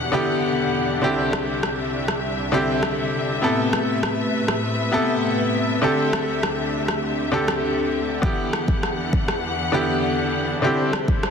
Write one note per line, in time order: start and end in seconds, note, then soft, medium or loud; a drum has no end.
0.00 1.01 E2 medium
0.00 1.00 B2 medium
0.00 0.12 D3 medium
0.00 0.13 B3 medium
0.00 3.39 D4 medium
0.00 0.13 E4 medium
0.00 0.14 G4 medium
0.00 3.39 G4 medium
0.00 1.00 F#5 medium
0.12 0.81 D3 medium
0.12 0.81 B3 medium
0.12 0.82 E4 medium
0.12 0.82 G4 medium
1.02 3.41 C2 medium
1.02 3.41 C3 medium
1.02 1.94 D3 medium
1.02 1.94 C4 medium
1.02 1.95 E4 medium
1.02 1.95 G4 medium
1.02 8.19 E5 medium
1.33 cross-stick medium
1.63 cross-stick medium
2.08 cross-stick medium
2.52 3.21 D3 medium
2.52 3.21 C4 medium
2.52 3.22 E4 medium
2.52 3.22 G4 loud
2.83 cross-stick medium
3.42 5.81 A2 medium
3.42 4.34 C3 medium
3.42 8.19 C3 medium
3.42 5.81 A3 medium
3.42 4.34 B3 medium
3.42 4.35 E4 medium
3.42 4.35 A4 medium
3.42 5.81 B4 medium
3.73 cross-stick medium
4.03 cross-stick medium
4.48 cross-stick medium
4.92 5.61 C3 medium
4.92 5.61 B3 medium
4.92 5.62 E4 medium
4.92 5.62 A4 loud
5.82 8.21 D2 medium
5.82 6.74 D3 medium
5.82 8.21 D3 medium
5.82 6.74 C4 medium
5.82 10.59 G4 medium
5.82 6.75 G4 medium
5.82 6.75 A4 medium
6.13 cross-stick medium
6.43 cross-stick medium
6.88 cross-stick medium
7.32 8.01 D3 medium
7.32 8.01 C4 medium
7.32 8.02 G4 medium
7.32 8.02 A4 medium
7.48 cross-stick medium
8.22 10.61 E2 medium
8.22 9.14 D3 medium
8.22 10.61 E3 medium
8.22 9.14 B3 medium
8.22 11.30 D4 medium
8.22 9.15 E4 medium
8.22 9.15 G4 medium
8.22 10.61 F#5 medium
8.22 kick loud
8.53 cross-stick medium
8.68 kick medium
8.83 cross-stick medium
9.13 kick medium
9.28 cross-stick medium
9.72 10.41 D3 medium
9.72 10.42 B3 medium
9.72 10.42 E4 medium
9.72 10.42 G4 loud
10.62 11.30 C3 medium
10.62 11.30 D3 medium
10.62 11.30 G3 medium
10.62 11.30 C4 medium
10.62 11.30 E4 medium
10.62 11.30 G4 medium
10.62 11.30 C5 medium
10.93 cross-stick medium
11.08 kick medium
11.23 cross-stick medium